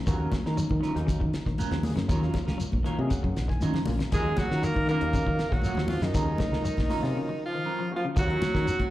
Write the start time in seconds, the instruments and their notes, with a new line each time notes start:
0.06 fingered electric bass D#2, clean electric guitar D#3 F#3 C#4 F4 A#4, tine electric piano F#3 A#3 C#4 F#4, kick, snare, closed hi-hat, high conga, low conga, shekere
0.20 clean electric guitar C#4 F4 A#4
0.32 clean electric guitar F#3, muted clean electric guitar stroke, kick, snare, closed hi-hat, high conga, shekere
0.46 fingered electric bass D#3, clean electric guitar C#4 F4 A#4, snare
0.57 clean electric guitar F#3, muted clean electric guitar stroke, closed hi-hat, shekere
0.69 fingered electric bass D#3, muted clean electric guitar stroke, kick, high conga
0.81 clean electric guitar D#3 F#3 C#4 F4 A#4, snare, closed hi-hat, shekere
0.94 fingered electric bass D#2, tine electric piano F#3 A#3 C#4 D#4, muted clean electric guitar stroke, snare, closed hi-hat, high conga
1.07 clean electric guitar C#3, kick, closed hi-hat, shekere
1.20 fingered electric bass D#3, clean electric guitar F#3, muted clean electric guitar stroke, kick
1.33 snare, closed hi-hat, shekere
1.46 fingered electric bass A#1, clean electric guitar D#3, muted clean electric guitar stroke, kick, snare
1.58 clean electric guitar F#3 C#4 F4 A#4, closed hi-hat, high conga, shekere
1.71 fingered electric bass D#2, clean electric guitar F3, snare, high conga
1.83 tine electric piano F#3 A#3 C#4 G#4, muted clean electric guitar stroke, open hi-hat, high conga, low conga, shekere
1.96 fingered electric bass F#2, clean electric guitar C#3, muted clean electric guitar stroke, snare, closed hi-hat
2.08 fingered electric bass D#2, clean electric guitar D#3 F#3 C#4 F4 A#4, tine electric piano F#3 A#3 C#4 F4, kick, closed hi-hat, high conga, low conga, shekere
2.23 clean electric guitar C#4 F4 A#4, snare
2.34 clean electric guitar F#3, muted clean electric guitar stroke, kick, snare, closed hi-hat, high conga, shekere
2.47 fingered electric bass C#2, clean electric guitar C#4 F4 A#4, snare
2.58 clean electric guitar F#3, muted fingered electric bass stroke, muted clean electric guitar stroke, closed hi-hat, shekere
2.72 fingered electric bass A#1, muted clean electric guitar stroke, kick, high conga
2.84 clean electric guitar D#3 F#3 C#4 F4 A#4, tine electric piano C#5, closed hi-hat, shekere
2.97 fingered electric bass C3, tine electric piano F#3 A#3 C#4 G#4 D#5, muted clean electric guitar stroke, high conga
3.09 clean electric guitar C#3, tine electric piano F#5, kick, closed hi-hat, high conga, shekere
3.23 fingered electric bass F#2, clean electric guitar F#3, muted clean electric guitar stroke, kick
3.36 fingered electric bass A#1, snare, closed hi-hat, shekere
3.48 clean electric guitar D#3, tine electric piano G#5, muted clean electric guitar stroke, kick, snare
3.60 fingered electric bass D#3, clean electric guitar F#3 C#4 F4 A#4, tine electric piano A#5, closed hi-hat, high conga, shekere
3.74 clean electric guitar F3, snare, high conga, low conga
3.86 fingered electric bass A#1, tine electric piano F#3 A#3 C#4 F4, muted clean electric guitar stroke, open hi-hat, high conga, low conga, shekere
3.99 clean electric guitar C#3, muted clean electric guitar stroke, snare, closed hi-hat
4.12 fingered electric bass D#2, clean electric guitar D#3 F#3 F4 A#4, tine electric piano F#3 A#3 C#4 F4, trombone G#3, alto saxophone G#4, muted clean electric guitar stroke, kick, closed hi-hat, high conga, low conga, shekere
4.26 clean electric guitar C#4 F4
4.37 clean electric guitar F#3, trombone F#3, alto saxophone F#4, muted clean electric guitar stroke, kick, snare, closed hi-hat, high conga, shekere
4.51 fingered electric bass D#3, clean electric guitar C#4 F4 A#4, snare
4.63 clean electric guitar F#3, trombone A#3, alto saxophone A#4, muted clean electric guitar stroke, closed hi-hat, shekere
4.74 fingered electric bass D#3, muted clean electric guitar stroke, kick, high conga
4.87 clean electric guitar D#3 F#3 C#4 F4 A#4, trombone A#3, alto saxophone A#4, closed hi-hat, shekere
5.00 fingered electric bass D#2, tine electric piano F#3 A#3 C#4 D#4, muted clean electric guitar stroke, closed hi-hat, high conga
5.12 clean electric guitar C#3, kick, closed hi-hat, high conga, shekere
5.26 fingered electric bass D#3, clean electric guitar F#3, muted clean electric guitar stroke, kick
5.39 snare, closed hi-hat, shekere
5.52 fingered electric bass A#1, clean electric guitar D#3, trombone F#3, alto saxophone F#4, muted clean electric guitar stroke, kick, snare
5.62 clean electric guitar F#3 C#4 F4, muted clean electric guitar stroke, closed hi-hat, high conga, shekere
5.75 fingered electric bass D#2, clean electric guitar F3, snare, high conga, low conga
5.88 trombone F3, tine electric piano F#3 A#3 C#4 F#4, alto saxophone F4, muted clean electric guitar stroke, open hi-hat, high conga, low conga, shekere
6.01 fingered electric bass F#2, clean electric guitar C#3, alto saxophone D#4, muted clean electric guitar stroke, snare, closed hi-hat
6.05 trombone D#3
6.13 fingered electric bass D#2, clean electric guitar D#3 F#3 C#4 F4 A#4, tine electric piano F#3 A#3 C#4 G#4, kick, snare, closed hi-hat, high conga, low conga, shekere
6.27 clean electric guitar C#4 F4 A#4
6.38 clean electric guitar F#3, muted clean electric guitar stroke, kick, snare, closed hi-hat, high conga, shekere
6.52 fingered electric bass C#2, clean electric guitar C#4 F4 A#4, snare
6.63 clean electric guitar F#3, muted clean electric guitar stroke, muted fingered electric bass stroke, closed hi-hat, shekere
6.77 fingered electric bass A#1, muted clean electric guitar stroke, kick, snare, high conga
6.89 clean electric guitar D#3 F#3 C#4 F4 A#4, snare, open hi-hat, high conga, shekere
7.02 fingered electric bass C3, tine electric piano F#3 A#3 C#4 F4, muted clean electric guitar stroke, snare
7.17 clean electric guitar C#3
7.27 clean electric guitar F#3, muted clean electric guitar stroke
7.46 trombone F3, alto saxophone F4
7.52 clean electric guitar D#3, muted clean electric guitar stroke
7.65 clean electric guitar F#3 C#4 F4 A#4
7.80 clean electric guitar F3
7.91 tine electric piano F#3 A#3 C#4 F#4, muted clean electric guitar stroke
7.95 trombone F3, alto saxophone F4
8.04 clean electric guitar C#3, muted clean electric guitar stroke
8.16 fingered electric bass D#2, clean electric guitar F#3 C#4 F4 A#4, trombone F#3, alto saxophone F#4, muted clean electric guitar stroke, kick, closed hi-hat, high conga, low conga, shekere
8.29 tine electric piano F#3 A#3 C#4 F4, closed hi-hat
8.42 clean electric guitar F#3, muted clean electric guitar stroke, snare, closed hi-hat, high conga, shekere
8.54 fingered electric bass D#3, clean electric guitar C#4 F4 A#4, kick, snare
8.66 clean electric guitar F#3, tine electric piano C#4 F4, muted clean electric guitar stroke, closed hi-hat, shekere
8.79 tine electric piano C#4 F4, muted clean electric guitar stroke, muted fingered electric bass stroke, kick, closed hi-hat, high conga